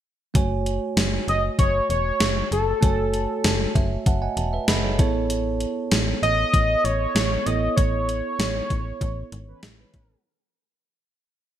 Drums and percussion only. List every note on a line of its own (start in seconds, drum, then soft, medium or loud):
0.35 kick medium
0.35 closed hi-hat medium
0.66 closed hi-hat medium
0.97 snare loud
0.97 closed hi-hat medium
1.28 closed hi-hat medium
1.59 kick medium
1.59 closed hi-hat medium
1.90 closed hi-hat medium
2.20 snare loud
2.20 closed hi-hat medium
2.52 closed hi-hat medium
2.83 kick loud
2.83 closed hi-hat medium
3.14 closed hi-hat medium
3.44 snare loud
3.44 closed hi-hat medium
3.75 kick medium
3.75 closed hi-hat medium
4.06 kick medium
4.06 closed hi-hat medium
4.37 closed hi-hat medium
4.68 snare loud
4.68 closed hi-hat medium
4.99 kick loud
4.99 closed hi-hat medium
5.30 closed hi-hat medium
5.60 closed hi-hat medium
5.91 snare loud
5.91 closed hi-hat medium
6.23 closed hi-hat medium
6.54 kick medium
6.54 closed hi-hat medium
6.85 closed hi-hat medium
7.16 snare loud
7.16 closed hi-hat medium
7.47 closed hi-hat medium
7.78 kick loud
7.78 closed hi-hat medium
8.09 closed hi-hat medium
8.39 snare loud
8.39 closed hi-hat medium
8.70 kick medium
8.70 closed hi-hat medium
9.01 kick medium
9.01 closed hi-hat medium
9.32 closed hi-hat medium
9.63 snare loud
9.63 closed hi-hat medium
9.94 kick medium
9.94 closed hi-hat medium